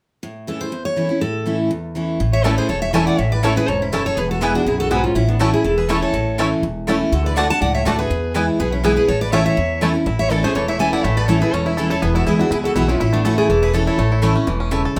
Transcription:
0.23 A2
0.47 E3 A3 C#4 E4 A4
0.61 C5
0.72 E2
0.85 C#5
0.96 E3 A3 C#4 E4
1.09 C#4 E4
1.21 A2 A4
1.46 E3 A3 C#4 E4
1.71 E2
1.95 E3 A3 C#4 E4
2.20 A1 A2
2.33 C#5 E5
2.44 E3 A3 C#4 E4 A4 C#5 D5 A5
2.57 G#4 C5
2.69 E1 E2 A4 C#5
2.82 C#5 E5
2.92 E3 A3 C#4 E4 C#5 E5 G#5 A5
3.06 D5 F#5
3.19 A1 A2 C#5 E5
3.32 B4 D5
3.43 E3 A3 C#4 E4 A4 C#5 A5
3.56 C#4 E4 G#4 B4
3.68 E1 G#2 A4 C#5
3.81 C#4 E4
3.92 F#2 A3 C#4 E4 A4 C#5 A5
4.05 A4 C#5
4.17 E1 E2 G#4 B4
4.30 F#4 A4
4.41 E3 G#3 B3 E4 G#4 B4 G#5
4.54 B3 D4 E4 F#4
4.66 B1 F#2 E4 G#4
4.80 F#4 A4
4.90 G#2 B3 E4 F#4 B4 G#5
5.04 C#4 F4
5.15 A1 A2 C#4 E4
5.29 B3 D4
5.39 E3 A3 C#4 E4 F#4 C#5 A5
5.53 C#4 E4 G#4
5.64 E1 E2 E4 A4
5.77 G#4 B4
5.89 E3 A3 C#4 E4 A4 C#5 A5
6.02 A4 C#5
6.13 A1 A2
6.38 E3 A3 C#4 E4 C#5 A5
6.63 E1 E2
6.87 E3 A3 C#4 E4 C#5 A5
7.12 D2 D3 F#4 A4
7.24 B4 D5
7.36 D3 A3 D4 F#4 D5 F#5 A5
7.50 D4 F#4 F#5 A5
7.61 C#2 A2 D5 F#5
7.75 C#5 E5
7.85 D2 D3 A3 D4 F#4 A4 D5 A5
7.98 D4 F#4 G#4 B4
8.10 E2
8.34 E3 G#3 B3 E4 B4 G#5
8.59 B1 B2 G#4 B4
8.72 C#4 E4
8.84 E3 G#3 B3 E4 G#4 B4 G#5
8.96 B3 E4 G#4 B4
9.08 A1 A2 A4 C#5
9.21 B4 D5
9.32 E3 A3 C#4 E4 C#5 E5 A5
9.46 C#5 E5
9.57 E2
9.81 E3 A3 C#4 E4 C#5 A5
9.94 C#4 E4
10.06 A1 A2 E4
10.19 C#5 E5
10.30 E3 A3 C#4 E4 A4 D5
10.43 A3 C#4 E4 G#4 C5
10.55 E1 E2 E3 A4 C#5
10.68 E4 C#5 E5
10.79 E3 A3 C#4 E4 A4 E5 G#5
10.93 E4 D5 F#5
11.04 A1 A2 A3 C#5 E5
11.17 A4 B4 D5
11.28 E3 A3 C#4 E4 A4 C#5
11.41 C#4 E4 G#4 A4 B4
11.53 E1 E2 C#4 A4 C#5
11.66 C#4 E4
11.77 E3 A3 C#4 E4 A4
11.90 C#4 E4 A4 C#5
12.02 E1 E2 B3 G#4 B4
12.15 E4 F#4 A4
12.26 D2 E3 G#3 B3 E4 G#4
12.39 B3 D4 E4 F#4
12.51 C#2 B2 E4 G#4
12.64 E4 F#4 A4
12.75 B1 E3 G#3 B3 E4 F#4
12.88 B3 C#4 E4 F4
13.00 A1 A2 C#4 E4
13.13 A3 B3 D4
13.25 E3 A3 C#4 E4 F#4 A4
13.38 A3 E4 G#4
13.49 E1 E2 E3 E4 A4
13.62 E4 G#4 B4
13.73 E3 A3 C#4 E4 A4 C#5
13.86 E4 A4 C#5
13.98 A1 A2 A3
14.12 E4
14.22 E3 A3 C#4 E4 C#5 A5
14.35 C#4 E4
14.47 E1 B2 E3
14.60 C#4
14.71 C#3 A3 E4 C#5 A5
14.85 A4
14.96 D2 F#4

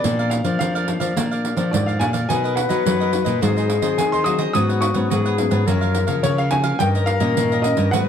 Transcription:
Already playing: D5
0.04 A#2 F3 A#3 D4 A#4 D5 F5, pandeiro
0.19 A#4 D5 F5, pandeiro
0.30 F5, muted cavaquinho stroke, pandeiro
0.44 F3 A#3 D4 A#4 D5 F5, pandeiro
0.59 F2 F3 D4 A#4 D5 F5, pandeiro
0.75 A#4 D5 F5, pandeiro
0.87 F3 A#3 D4, muted cavaquinho stroke, pandeiro
1.00 F3 A#4 D5 F5, pandeiro
1.17 A#2 F3 A#3 D4 A#4 D5 F5, pandeiro
1.31 A#4 D5 F5, pandeiro
1.45 pandeiro
1.57 F3 A#3 D4 A#4 D5 F5, pandeiro
1.71 F2 G#2 D5, pandeiro
1.86 A#4 D5 F5, pandeiro
1.99 A#2 F3 A#3 D4 A#4 D5 F5 G#5, pandeiro
2.13 A#4 D5 F5, pandeiro
2.29 B2 F#3 A#3 D#4 A#4 B4 D#5 G#5, pandeiro
2.44 A#4 B4 D#5, pandeiro
2.55 F#5, muted cavaquinho stroke, pandeiro
2.69 F#3 D#4 A#4 B4 D#5, pandeiro
2.85 F#2 F#3 D#4 A#4 B4 D#5, pandeiro
3.00 A#4 B4 D#5, pandeiro
3.12 F#3 A#3 D#4, muted cavaquinho stroke, pandeiro
3.25 A#2 A#4 B4 D#5, pandeiro
3.41 G#2 F#3 C4 D#4 F#4 G#4 C5 D#5, pandeiro
3.57 G#4 C5 D#5, pandeiro
3.70 pandeiro
3.82 D#3 F#3 C4 D#4 G#4 C5 D#5, pandeiro
3.98 D#3 G#5, pandeiro
4.12 G#4 C5 D#5 C6, pandeiro
4.24 F#3 C4 D#4 F#4 G#4 C5 D#5 D#6, pandeiro
4.39 G#4 C5 D#5, pandeiro
4.53 G#2 F#3 B3 C#4 F#4 B4 C#5 F#5 D#6, pandeiro
4.69 B4 C#5 F#5, pandeiro
4.81 C#6, muted cavaquinho stroke, pandeiro
4.94 G#2 F#3 B3 C#4 B4 C#5 F#5, pandeiro
5.10 G#2 F#4 G#4 B4 C#5 F#5, pandeiro
5.26 B4 C#5 F#5, pandeiro
5.38 F#3 B3 C#4, muted cavaquinho stroke, pandeiro
5.51 G#2 B4 C#5 F#5, pandeiro
5.67 F#2 F3 A#3 C#4 F#4 A#4 C#5 F5, pandeiro
5.81 A#4 C#5 F5, pandeiro
5.95 pandeiro
6.07 C#3 F3 A#3 C#4 A#4 C#5 F5, pandeiro
6.23 C#3 C#5, pandeiro
6.38 A#4 C#5 F5, pandeiro
6.51 F3 A#3 C#4 F#4 A#4 C#5 F5 G#5, pandeiro
6.64 A#4 C#5 F5, pandeiro
6.79 G2 D#3 A#3 C#4 D#4 G4 A#4 C#5 D#5 G5, pandeiro
6.95 G4 C#5 D#5, pandeiro
7.06 F5, muted cavaquinho stroke, pandeiro
7.20 A#2 D#3 A#3 C#4 G4 C#5 D#5, pandeiro
7.37 G2 A#2 D#4 G4 C#5 D#5, pandeiro
7.52 G4 C#5 D#5, pandeiro
7.62 D#3 A#3 C#4 D#5, muted cavaquinho stroke, pandeiro
7.77 G2 G4 C#5 D#5, pandeiro
7.91 G#2 F#3 B3 D#4 F#4 G#4 B4 D#5 F#5, pandeiro

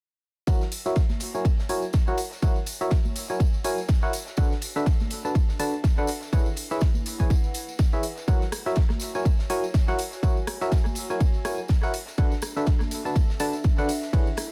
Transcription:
0.47 F#3 E4 F#4 A#4 C#5 F#5, kick, ride, tambourine
0.61 snare, tambourine
0.72 open hi-hat, ride, tambourine
0.85 F#3 E4 F#4 A#4 C#5 E5, snare, tambourine
0.96 kick, snare, ride, tambourine
1.10 snare, tambourine, high conga
1.20 snare, open hi-hat, ride, tambourine
1.35 F#3 E4 F#4 A#4 C#5 G#5, tambourine
1.45 G#5, kick, ride, tambourine
1.59 snare, tambourine
1.69 F#3 E4 F#4 A#4 C#5 G#5, open hi-hat, ride, tambourine
1.82 tambourine
1.93 kick, snare, ride, tambourine
2.08 F#3 E4 F#4 A#4 C#5 F#5, tambourine
2.17 open hi-hat, ride, tambourine
2.33 snare, tambourine
2.42 F#3 E4 F#4 A#4 C#5 F#5, kick, ride, tambourine
2.56 tambourine
2.66 open hi-hat, ride, tambourine
2.81 F#3 E4 F#4 A#4 C#5 E5, ride, tambourine
2.91 kick, snare, ride, tambourine
3.05 tambourine, high conga
3.16 open hi-hat, ride, tambourine
3.30 F#3 E4 F#4 A#4 C#5 G#5, tambourine
3.40 kick, ride, tambourine
3.54 tambourine
3.64 F#3 E4 F#4 A#4 C#5 G#5, open hi-hat, ride, tambourine
3.78 tambourine
3.88 kick, snare, ride, tambourine
4.02 E4 F#4 A#4 C#5 F#5, snare, tambourine
4.13 D4, open hi-hat, ride, tambourine
4.27 snare, tambourine
4.37 D3 D4 F#4 A4 B4 F#5, kick, ride, tambourine
4.45 A4
4.52 snare, tambourine
4.62 open hi-hat, ride, tambourine
4.75 D3 D4 F#4 A4 B4 E5, snare, tambourine
4.86 kick, snare, ride, tambourine
5.00 snare, tambourine, high conga
5.05 E5
5.10 snare, open hi-hat, ride, tambourine
5.25 D3 D4 F#4 A4 B4 A5, tambourine
5.35 kick, ride, tambourine
5.49 snare, tambourine
5.59 D3 D4 F#4 A4 B4 A5, open hi-hat, ride, tambourine
5.74 tambourine
5.84 kick, snare, ride, tambourine
5.98 D3 D4 F#4 A4 B4 F#5, tambourine
6.07 open hi-hat, ride, tambourine
6.22 snare, tambourine
6.33 E3 E4 G#4 B4 C#5 F#5, kick, ride, tambourine
6.46 tambourine
6.56 F#5, open hi-hat, ride, tambourine
6.70 E3 E4 G#4 B4 C#5 E5, ride, tambourine
6.81 kick, snare, ride, tambourine
6.94 tambourine, high conga
7.06 open hi-hat, ride, tambourine
7.20 E3 E4 G#4 B4 C#5 G#5, kick, tambourine
7.30 kick, ride, tambourine
7.44 tambourine
7.54 open hi-hat, ride, tambourine
7.69 tambourine
7.79 kick, snare, ride, tambourine
7.93 E3 E4 G#4 B4 C#5 E5, snare, tambourine
8.03 open hi-hat, ride, tambourine
8.18 snare, tambourine
8.28 F#3 E4 F#4 A#4 C#5 F#5, kick, ride, tambourine
8.42 snare, tambourine
8.52 cross-stick, open hi-hat, ride, tambourine
8.62 C#5
8.66 F#3 E4 F#4 A#4 C#5 E5, snare, tambourine
8.76 kick, snare, ride, tambourine
8.90 snare, tambourine, high conga
9.00 snare, open hi-hat, ride, tambourine
9.09 G#5
9.15 F#3 E4 F#4 A#4 C#5 G#5, tambourine
9.25 kick, ride, tambourine
9.39 snare, tambourine
9.50 F#3 E4 F#4 A#4 C#5 G#5, open hi-hat, ride, tambourine
9.64 tambourine
9.74 kick, snare, ride, tambourine
9.88 F#3 E4 F#4 A#4 C#5 F#5, tambourine
9.99 open hi-hat, ride, tambourine
10.13 snare, tambourine
10.23 F#3 E4 F#4 A#4 C#5 F#5, kick, ride, tambourine
10.37 tambourine
10.47 cross-stick, open hi-hat, ride, tambourine
10.61 F#3 E4 F#4 A#4 C#5 E5, ride, tambourine
10.72 kick, snare, ride, tambourine
10.86 tambourine, high conga
10.95 open hi-hat, ride, tambourine
11.10 F#3 E4 F#4 A#4 C#5 G#5, tambourine
11.20 kick, ride, tambourine
11.34 tambourine
11.45 F#3 E4 F#4 A#4 C#5 G#5, cross-stick, open hi-hat, ride, tambourine
11.58 tambourine
11.68 kick, snare, ride, tambourine
11.83 E4 F#4 A#4 C#5 F#5, snare, tambourine
11.94 D4, open hi-hat, ride, tambourine
12.08 snare, tambourine
12.18 D3 D4 F#4 A4 B4 F#5, kick, ride, tambourine
12.27 A4 E5
12.32 snare, tambourine
12.42 cross-stick, open hi-hat, ride, tambourine
12.56 D3 D4 F#4 A4 B4 E5, snare, tambourine
12.66 kick, snare, ride, tambourine
12.81 snare, tambourine, high conga
12.91 snare, open hi-hat, ride, tambourine
13.05 D3 D4 F#4 A4 B4 A5, tambourine
13.16 kick, ride, tambourine
13.30 snare, tambourine
13.40 D3 D4 F#4 A4 B4 A5, snare, open hi-hat, ride, tambourine
13.53 snare, tambourine
13.64 kick, snare, ride, tambourine
13.78 D3 D4 F#4 A4 B4 F#5, tambourine
13.89 open hi-hat, ride, tambourine
14.03 snare, tambourine
14.13 E3 E4 G#4 B4 C#5 F#5, kick, ride, tambourine
14.27 tambourine
14.37 cross-stick, open hi-hat, ride, tambourine
14.49 B4

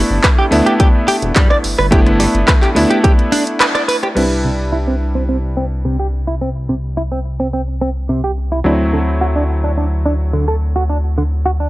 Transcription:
Already playing: A3 B3 D4 E4
0.10 G1
0.24 B4, kick, clap, closed hi-hat
0.39 G4
0.51 D2 A3 B3 D4 E4, open hi-hat
0.66 G4, closed hi-hat
0.80 G4, kick, closed hi-hat
1.08 G4, open hi-hat
1.22 E1, closed hi-hat
1.36 G2 G3, kick, clap, closed hi-hat
1.50 D5, cross-stick
1.64 G1, open hi-hat
1.78 G1 B4, cross-stick
1.91 A3 B3 D4 E4 G4, kick, closed hi-hat
2.06 cross-stick, closed hi-hat
2.20 G3, open hi-hat
2.35 G1, closed hi-hat
2.48 B4, kick, clap, closed hi-hat
2.62 G4, clap, closed hi-hat
2.75 D2 A3 B3 D4 E4, open hi-hat
2.90 G4, closed hi-hat
3.04 G4, kick, closed hi-hat
3.19 closed hi-hat
3.32 D4, open hi-hat
3.47 closed hi-hat
3.60 B4, clap, closed hi-hat
3.75 D5, cross-stick, closed hi-hat
3.88 B4, open hi-hat
4.03 G4, cross-stick, closed hi-hat
4.15 C2 G3 C4 D4 E4 B4, crash
4.44 C3
4.72 E4
4.87 C4
5.15 C4
5.29 C4
5.57 C4
5.85 C3
5.99 G4
6.27 E4
6.41 C4
6.69 C3
6.97 E4
7.12 C4
7.40 C4
7.53 C4
7.81 C4
8.09 C3
8.24 G4
8.52 E4
8.64 D2 F#3 A3 C4 D4 E4
8.93 D3
9.21 F#4
9.36 D4
9.64 D4
9.78 D4
10.06 D4
10.33 D3
10.48 A4
10.76 F#4
10.90 D4
11.18 D3
11.46 F#4
11.60 D4

